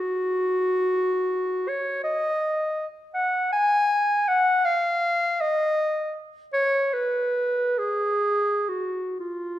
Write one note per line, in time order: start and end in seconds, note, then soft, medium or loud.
0.00 1.70 F#4 medium
1.69 2.03 C#5 medium
2.04 2.87 D#5 medium
3.14 3.50 F#5 medium
3.53 4.30 G#5 loud
4.28 4.67 F#5 loud
4.65 5.43 F5 loud
5.41 6.15 D#5 medium
6.54 6.95 C#5 loud
6.94 7.80 B4 medium
7.78 8.70 G#4 medium
8.69 9.18 F#4 medium
9.20 9.59 F4 medium